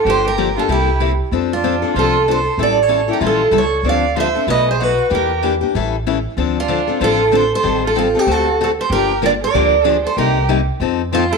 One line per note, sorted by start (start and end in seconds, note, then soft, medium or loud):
0.05 0.56 G1 medium
0.05 0.25 D3 medium
0.05 0.26 F3 medium
0.05 0.26 A#3 medium
0.05 0.26 D4 medium
0.05 0.23 G4 medium
0.05 0.26 G4 medium
0.10 0.25 C5 medium
0.24 0.54 G4 medium
0.24 0.55 A#4 medium
0.38 0.48 D3 medium
0.38 0.48 F3 medium
0.38 0.48 A#3 medium
0.38 0.49 D4 medium
0.38 0.48 G4 medium
0.56 0.68 A#3 soft
0.56 0.69 D4 soft
0.56 0.68 F4 medium
0.56 0.68 G4 soft
0.56 0.69 A4 medium
0.68 1.19 C2 medium
0.68 0.88 C3 medium
0.68 0.89 G3 medium
0.68 0.89 A#3 medium
0.68 0.89 E4 medium
0.68 0.99 E4 medium
0.68 0.89 G4 medium
0.68 1.00 G4 medium
1.00 1.11 C3 medium
1.00 1.11 G3 medium
1.00 1.11 A#3 medium
1.00 1.11 E4 medium
1.00 1.11 G4 medium
1.31 1.82 F2 medium
1.31 1.52 F3 medium
1.31 1.52 C4 medium
1.31 1.52 D4 medium
1.31 1.53 A4 medium
1.52 1.93 D4 medium
1.52 1.98 F4 medium
1.64 1.74 F3 medium
1.64 1.74 C4 medium
1.64 1.74 D4 medium
1.64 1.75 A4 medium
1.82 1.95 C4 soft
1.82 1.95 D4 soft
1.82 1.94 A4 medium
1.95 2.45 C2 medium
1.95 2.15 F3 medium
1.95 2.15 C4 medium
1.95 2.16 D4 medium
1.95 2.25 F4 medium
1.95 2.16 A4 medium
1.99 2.29 A4 medium
2.28 2.38 F3 medium
2.28 2.38 C4 medium
2.28 2.38 D4 medium
2.28 2.57 A4 medium
2.28 2.38 A4 medium
2.28 2.59 C5 medium
2.58 3.08 A1 medium
2.58 2.79 E3 medium
2.58 2.78 G3 medium
2.58 2.79 C#4 medium
2.58 2.79 E4 medium
2.58 2.80 A4 medium
2.58 2.79 A4 medium
2.63 2.82 D5 medium
2.80 3.10 A4 medium
2.80 3.11 C#5 medium
2.88 3.00 E3 medium
2.88 3.00 G3 medium
2.88 3.00 C#4 medium
2.88 3.00 E4 medium
2.88 3.00 A4 medium
3.08 3.20 C#4 soft
3.08 3.20 E4 soft
3.08 3.22 G4 medium
3.08 3.20 A4 medium
3.13 3.24 A#4 medium
3.20 3.48 A#1 medium
3.20 3.41 E3 medium
3.20 3.41 G3 medium
3.20 3.41 C#4 medium
3.20 3.41 E4 medium
3.20 3.51 F4 medium
3.20 3.42 A4 medium
3.27 3.54 A4 medium
3.51 3.79 C#2 medium
3.51 3.63 E3 medium
3.51 3.63 G3 medium
3.51 3.63 C#4 medium
3.51 3.64 E4 medium
3.51 3.64 A4 medium
3.56 3.84 A4 medium
3.56 3.88 C#5 medium
3.83 4.34 D2 medium
3.83 4.04 D3 medium
3.83 4.04 F3 medium
3.83 4.05 C4 medium
3.83 4.05 D4 medium
3.83 4.05 A4 medium
3.87 4.15 D5 medium
3.87 4.19 F5 medium
4.16 4.27 D3 medium
4.16 4.27 F3 medium
4.16 4.27 C4 medium
4.16 4.27 D4 medium
4.16 4.27 A4 medium
4.16 4.47 C5 medium
4.16 4.50 E5 medium
4.35 4.48 C4 soft
4.35 4.48 D4 medium
4.35 4.47 A4 soft
4.47 4.98 B1 medium
4.47 4.68 B2 medium
4.47 4.68 F#3 medium
4.47 4.68 A3 medium
4.47 4.68 D#4 medium
4.47 4.68 F#4 medium
4.47 4.67 B4 medium
4.47 4.69 D#5 medium
4.69 4.83 G#4 medium
4.69 4.83 C5 medium
4.80 4.91 B2 medium
4.80 4.91 F#3 medium
4.80 4.91 A3 medium
4.80 4.91 D#4 medium
4.80 4.91 F#4 medium
4.80 5.12 F#4 medium
4.80 5.13 B4 medium
5.10 5.62 E2 medium
5.10 5.30 E3 medium
5.10 5.31 A#3 medium
5.10 5.31 D4 medium
5.10 5.31 G4 medium
5.10 5.41 G4 medium
5.15 5.42 A#4 medium
5.43 5.53 E3 medium
5.43 5.54 A#3 medium
5.43 5.54 D4 medium
5.43 5.54 G4 medium
5.61 5.74 A#3 soft
5.61 5.74 D4 soft
5.61 5.73 G4 medium
5.75 6.25 A1 medium
5.75 5.95 E3 medium
5.75 5.95 G3 medium
5.75 5.95 C#4 medium
5.75 5.95 E4 medium
5.75 5.95 A4 medium
6.07 6.17 E3 medium
6.07 6.17 G3 medium
6.07 6.17 C#4 medium
6.07 6.17 E4 medium
6.07 6.18 A4 medium
6.37 6.88 D2 medium
6.37 6.57 D3 medium
6.37 6.58 F3 medium
6.37 6.58 C4 medium
6.37 6.57 D4 medium
6.37 6.58 A4 medium
6.58 6.99 D4 medium
6.58 7.04 F4 medium
6.68 6.80 D3 medium
6.68 6.80 F3 medium
6.68 6.80 C4 medium
6.68 6.80 D4 medium
6.68 6.80 A4 medium
6.88 7.00 C4 soft
6.88 7.00 D4 soft
6.88 7.00 A4 medium
7.00 7.51 A1 medium
7.00 7.21 D3 medium
7.00 7.21 F3 medium
7.00 7.21 C4 medium
7.00 7.21 D4 medium
7.00 7.31 F4 medium
7.00 7.21 A4 medium
7.00 7.32 A4 medium
7.32 7.43 D3 medium
7.32 7.43 F3 medium
7.32 7.43 C4 medium
7.32 7.43 D4 medium
7.32 7.44 A4 medium
7.32 7.51 A4 medium
7.32 7.52 C5 medium
7.54 7.83 A4 medium
7.54 7.83 C5 loud
7.63 8.15 A1 medium
7.63 7.83 D#3 medium
7.63 7.84 G3 medium
7.63 7.84 C4 medium
7.63 7.84 G4 medium
7.63 7.84 A4 medium
7.86 7.96 F4 medium
7.86 7.98 A4 medium
7.95 8.06 D#3 medium
7.95 8.06 G3 medium
7.95 8.07 C4 medium
7.95 8.19 C4 medium
7.95 8.19 F4 medium
7.95 8.07 G4 medium
7.95 8.07 A4 medium
8.15 8.27 C4 soft
8.15 8.31 D#4 medium
8.15 8.27 G4 soft
8.15 8.27 A4 medium
8.19 8.31 G4 medium
8.26 8.77 D2 medium
8.26 8.47 D3 medium
8.26 8.47 A3 medium
8.26 8.48 C4 medium
8.26 8.48 F#4 medium
8.26 8.60 F#4 medium
8.26 8.48 A4 medium
8.31 8.62 A4 medium
8.61 8.71 D3 medium
8.61 8.71 A3 medium
8.61 8.71 C4 medium
8.61 8.71 F#4 medium
8.61 8.70 F#4 medium
8.61 8.71 A4 medium
8.61 8.69 A4 medium
8.79 8.90 A4 medium
8.79 8.92 C5 medium
8.90 9.41 G1 medium
8.90 9.11 D3 medium
8.90 9.12 F3 medium
8.90 9.12 A#3 medium
8.90 9.12 D4 medium
8.90 9.20 G4 medium
8.90 9.12 G4 medium
8.90 9.21 A#4 medium
9.22 9.33 D3 medium
9.22 9.33 F3 medium
9.22 9.33 A#3 medium
9.22 9.33 D4 medium
9.22 9.33 G4 medium
9.22 9.31 A#4 medium
9.22 9.31 D5 medium
9.41 9.86 A#4 medium
9.41 9.93 D5 medium
9.54 10.05 D2 medium
9.54 9.74 D3 medium
9.54 9.74 F3 medium
9.54 9.74 A#3 medium
9.54 9.74 D4 medium
9.54 9.74 G4 medium
9.84 9.96 D3 medium
9.84 9.96 F3 medium
9.84 9.96 A#3 medium
9.84 9.96 D4 medium
9.84 9.96 G4 medium
9.84 10.00 G#4 medium
9.93 10.06 C5 medium
10.04 10.16 A4 medium
10.04 10.18 C5 medium
10.17 10.68 C2 medium
10.17 10.37 C3 medium
10.17 10.37 G3 medium
10.17 10.37 A#3 medium
10.17 10.38 D#4 medium
10.17 10.47 G4 medium
10.17 10.38 G4 medium
10.17 10.47 A#4 medium
10.49 10.59 C3 medium
10.49 10.60 G3 medium
10.49 10.60 A#3 medium
10.49 10.60 D#4 medium
10.49 10.60 G4 medium
10.80 11.31 F2 medium
10.80 11.00 F3 medium
10.80 11.01 C4 medium
10.80 11.01 D#4 medium
10.80 11.01 A4 medium
11.12 11.23 F3 medium
11.12 11.29 C4 medium
11.12 11.23 C4 medium
11.12 11.23 D#4 medium
11.12 11.33 F4 medium
11.12 11.23 A4 medium
11.30 11.38 F4 medium
11.30 11.38 A4 medium